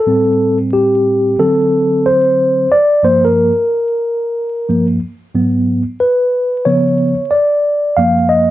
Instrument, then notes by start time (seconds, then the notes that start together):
tine electric piano
Already playing: A4
0.07 A2 G3 C4
0.73 G4
1.39 D3 F#3 C4 A4
2.06 C5
2.72 D5
3.03 G2 F3 A#3 C5
3.25 A#4
4.69 G2 F3 A#3
5.35 G#2 F#3 B3
6.00 B4
6.65 C#3 F3 B3 C#5
7.31 D5
7.97 F#2 F3 A#3 F5
8.29 D#5